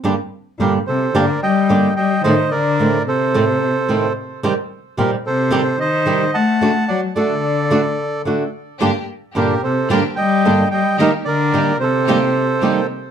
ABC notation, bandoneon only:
X:1
M:4/4
L:1/8
Q:1/4=110
K:Gm
V:1 name="Bandoneon"
z2 [GB] [Ac] [Bd] [eg]2 [eg] | [ce] [Bd]2 [Ac]4 z | z2 [GB] [Ac]2 [ce]2 [^fa]- | [^fa] [df] [Ad]4 z2 |
z2 [GB] [Ac] [Bd] [eg]2 [eg] | [Be] [Bd]2 [Ac]4 z |]